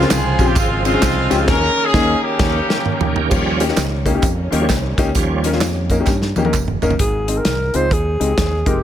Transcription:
Already playing: C#3 F3 G#3 C4 G#4
0.01 C4 C#4 F4 A#4, snare
0.10 C2 C4 F4 G#4, snare, clap, ride, tambourine
0.39 A#1 C4 C#4 F4 G4, kick, ride, tambourine
0.48 G4
0.56 G#1 G#3 C4 F4, kick, clap, ride, tambourine
0.85 G#3 C4 C#4 F4 G#4, ride, tambourine
0.94 C4 C#4 F4 G#4
1.02 C2, kick, snare, clap, ride, tambourine
1.30 C#2 C4 C#4 F4 G4, snare, ride, tambourine
1.39 C4 C#4 F4 G#4
1.48 D#2 D#3 A#3 C#4 G4 A#4, kick, snare, crash
1.54 G#4
1.85 C#4 G#4
1.94 D#2 A#3 C#4 D#4, kick, snare
2.22 A#3 C#4 G4
2.39 D#2 D#3 A#3 C#4 F4, kick, snare, crash
2.45 G4
2.70 snare
2.86 mid tom
3.01 floor tom
3.16 floor tom
3.30 D#2 D#3 F3 G3 A#3 C#4, kick, crash, tambourine
3.60 A#3 C#4 D#4 G4, closed hi-hat, tambourine
3.68 A#3 C#4 D#4 G4, snare
3.77 C#2, snare, clap, closed hi-hat, tambourine
4.06 A#3 C#4 D#4 G4, kick, closed hi-hat, tambourine
4.14 A#3 C#4 D#4 G4
4.23 F2, kick, clap, closed hi-hat, tambourine
4.51 D#2 F3 G3 A#3 C#4 D#4 G4, closed hi-hat, tambourine
4.61 A#3 C#4 D#4 G4
4.69 C2, kick, snare, clap, closed hi-hat, tambourine
4.98 C#2 A#3 C#4 D#4 G4, kick, snare, closed hi-hat, tambourine
5.15 D#2 D#3 F3 G3 C#4, kick, closed hi-hat, tambourine
5.44 A#3 C#4 D#4 A#4, closed hi-hat, tambourine
5.53 A#3 C#4 D#4 F4, snare
5.61 F2, snare, clap, closed hi-hat, tambourine
5.90 A#3 C#4 D#4 A#4, kick, closed hi-hat, tambourine
6.00 A#3 C#4 D#4 G4
6.06 G2, kick, snare, clap, tambourine
6.22 snare
6.36 D#2 A#3 C#4 D#4 G4, high tom, tambourine
6.45 A#3 C#4 D#4 A#4, high tom
6.53 F1, kick, clap, mid tom, tambourine
6.68 mid tom
6.82 G1 A#3 C#4 D#4 A#4, floor tom, tambourine
6.91 floor tom
6.99 G#1 G#2 G#4, kick, closed hi-hat
7.28 G#3 C4 D#4 G#4, closed hi-hat
7.38 A#4
7.45 C2, snare, closed hi-hat
7.74 C#2 G#3 C4 D#4 F4 C5, closed hi-hat
7.91 D#2 G#4, kick, closed hi-hat
8.20 C#2 G#3 C4 D#4 G4, closed hi-hat
8.38 D#2, kick, snare, closed hi-hat
8.66 F1 G#3 C4 D#4 G4 A#4, kick, closed hi-hat

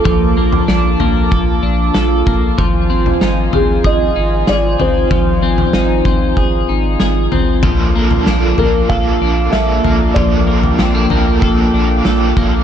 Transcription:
Already playing: A#3 D4 F4 A4 A5 D6
0.05 A#1 F3, kick, floor tom
0.37 A#3
0.53 floor tom
0.68 A#1 D4, snare
1.00 A#1 A#3, floor tom
1.31 A#1 A4, kick, floor tom
1.63 A#1 D4
1.94 A#1 A4, snare
2.27 A#1 A#3, kick, floor tom
2.58 G#1 F3 C5 G#5, kick, floor tom
2.90 C4
3.06 floor tom
3.21 G#1 D#4, snare
3.53 G#1 C4 G#4, floor tom
3.84 G#1 G#4 D#5, kick, floor tom
4.16 G#1 D#4
4.47 G#1 G#4 D5, snare
4.79 G#1 C4 C5, floor tom
5.11 G#1 F3, kick, floor tom
5.42 C4
5.58 floor tom
5.73 G#1 D#4, snare
6.05 G#1 C4, kick, floor tom
6.37 G#1 G#4, kick, floor tom
6.69 G#1 D#4
7.00 G#1 G#4, snare
7.32 G#1 C4, floor tom
7.63 A#1 A#2 F3 A#3 D4 A4 A5 D6, kick, floor tom
7.94 A#3 D4 A4
8.11 floor tom
8.26 A#1 F3 A#3 D4 A4, snare
8.58 A#1 A#3 D4 A#4, floor tom
8.89 A#1 A#2 F3 A#3 D4 A4 F5, kick, floor tom
9.20 A#1 A#3 D4 A4
9.52 A#1 F3 A#3 D4 A4 E5, snare
9.83 A#1 A#3 D4 A4, floor tom
10.14 A#1 A#2 F3 A#3 D4 A4 D5 G5, kick, floor tom
10.46 A#3 D4 A4
10.63 floor tom
10.78 A#1 F3 A#3 C4 D4 A4, snare
10.95 D4
11.10 A#1 A#3 D4 A4, floor tom
11.41 A#1 A#2 F3 A#3 D4 A4, kick, floor tom
11.72 A#1 A#3 D4 A4
12.05 A#1 F3 A#3 D4 A4, snare
12.36 A#1 A#3 D4 A4, kick, floor tom

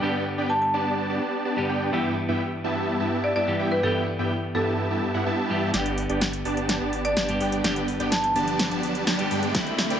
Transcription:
0.01 G2 D3 G3 B3 D4 G4 D5 G5
0.38 B3 D4 G4 D5 G5
0.50 A5
0.62 A5
0.74 B3 D4 G4 D5 A5
1.09 B3 D4 G4 D5 A5
1.45 B3 D4 G4 D5 A5
1.56 G2 D3 G3 B3 G4
1.69 B3 D4 G4 D5 G5
1.92 G2 E3 G3 B3 E4 G4 E5 G5
2.28 G2 B3 E4 G4 E5 G5
2.64 G2 B3 E4 G4 E5 A5
3.00 G2 B3 E4 G4 E5 A5
3.24 D5
3.36 G2 B3 E4 G4 D5 E5 A5
3.47 G2 E3 G3 B3 G4
3.59 G2 B3 E4 G4 E5 G5
3.72 B4
3.82 G2 E3 G3 B3 E4 G4 A4 E5 G5
4.19 G2 B3 E4 G4 E5 G5
4.55 G2 B3 E4 G4 A4 E5 A5
4.90 G2 B3 E4 G4 E5 A5
5.14 G2 B3 E4 G4 E5 F#5
5.26 G2 B3 E4 G4 E5 A5
5.49 G2 E3 G3 B3 G4
5.73 G1 G2 D3 G3 B3 D4 G4 D5 G5, snare, closed hi-hat, riser
5.86 closed hi-hat
5.98 open hi-hat
6.09 G1 B3 D4 G4 D5 G5, closed hi-hat
6.21 snare, closed hi-hat
6.33 closed hi-hat
6.45 G1 B3 D4 G4 D5 A5, open hi-hat
6.57 closed hi-hat
6.69 snare, closed hi-hat
6.81 G1 B3 D4 G4 D5 A5
6.93 open hi-hat
7.05 D5, closed hi-hat
7.17 G1 B3 D4 G4 D5 A5, snare, closed hi-hat
7.28 G2 D3 G3 B3 G4, closed hi-hat
7.40 G1 B3 D4 G4 D5 G5, open hi-hat
7.52 closed hi-hat
7.63 G1 G2 D3 G3 B3 D4 G4 D5 G5, snare, closed hi-hat
7.76 closed hi-hat
7.88 open hi-hat
8.00 G1 B3 D4 G4 D5 G5, closed hi-hat
8.12 A5, snare, closed hi-hat
8.24 A5, closed hi-hat
8.36 G1 B3 D4 G4 D5 A5, open hi-hat
8.48 closed hi-hat
8.59 snare, closed hi-hat
8.71 G1 B3 D4 G4 D5 A5, closed hi-hat
8.83 open hi-hat
8.95 closed hi-hat
9.07 G1 B3 D4 G4 D5 A5, snare, closed hi-hat
9.18 G2 D3 G3 B3 G4, closed hi-hat
9.31 G2 B3 D4 G4 D5 G5, open hi-hat
9.43 closed hi-hat
9.53 C2 D3 G3 C4 E4 G4 D5 G5, kick, snare, closed hi-hat
9.67 closed hi-hat
9.78 snare, open hi-hat
9.90 C2 C4 E4 G4 D5 G5, closed hi-hat

